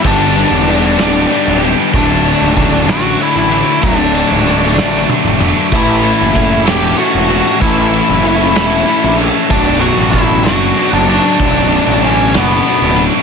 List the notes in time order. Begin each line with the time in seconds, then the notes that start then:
0.03 G1 G2 D3 G3 B3 D4 G4 D5, kick, ride
0.35 G3 B3 D4 G4, ride
0.51 E1
0.66 G3 B3 D4 G4, ride
0.98 D1 G2 D3 G3 B3 D4 G4, snare, ride
1.30 G3 B3 D4 G4, ride
1.47 D1
1.61 G3 B3 D4 G4, ride
1.92 D1 D2 A2 D3 F#3 A3 D4 D5, kick, ride
1.96 D4
2.23 D3 F#3 A3 D4, ride
2.41 C#1
2.56 D3 F#3 A3 D4, kick, ride
2.87 A1 D2 A2 D3 F#3 A3 D4 F#4 F#5, snare, ride
3.18 D3 F#3 A3 D4 E5, ride
3.23 E4
3.35 A1
3.50 D3 F#3 A3 D4, ride
3.81 D1 D2 A2 D3 F#3 A3 D4 D5, kick, ride
4.12 D3 F#3 A3 D4, ride
4.31 C#1
4.44 D3 F#3 A3 D4, ride
4.75 A1 D3 F#3 A3 D4, snare
4.79 D2 A2
5.07 D3 F#3 A3 D4, high tom
5.24 E1, mid tom
5.39 D3 F#3 A3 D4, mid tom
5.71 A1 A2 E3 A3 C#4 E4 A4, kick, crash
5.75 E5
6.02 A3 C#4 E4 A4, ride
6.21 F#1
6.33 A3 C#4 E4 A4, kick, ride
6.65 E1 A2 E3 A3 C#4 E4 G4 A4 G5, snare, ride
6.96 A3 C#4 E4 F#4 A4 F#5, ride
7.15 E1
7.28 A3 C#4 E4 A4, ride
7.59 A1 A2 E3 A3 C#4 E4 A4 E5, kick, ride
7.91 A3 C#4 E4 A4, ride
8.09 F#1
8.23 A3 C#4 E4 A4, ride
8.54 E1 A2 E3 A3 C#4 E4 A4, snare, ride
8.86 A3 C#4 E4 A4, ride
9.04 A#1
9.17 A3 C#4 E4 A4, ride
9.48 B0 B1 F#2 B2 F#3 D4 D5, kick, ride
9.79 B2 F#3 D4 F#4 F#5, ride
9.98 A1
10.11 F#2 B2 F#3 D4 E4 E5, kick, ride
10.43 F#1 F#2 B2 F#3 D4 F#4 F#5, snare, ride
10.48 B1
10.75 F#2 B2 F#3 D4, ride
10.93 F#1 D4 D5
11.06 B2 F#3 D4 D5, ride
11.38 B0 B1 F#2 B2 F#3 D4, kick, ride
11.68 B2 F#3 D4, ride
11.87 A1
12.00 F#2 B2 F#3 D4, ride
12.05 C#4 C#5
12.32 F#1 F#2 B2 F#3 D4, snare, ride
12.37 B1 B3 B4
12.64 F#2 B2 F#3 D4, ride
12.82 D1
12.96 B2 F#3 D4, ride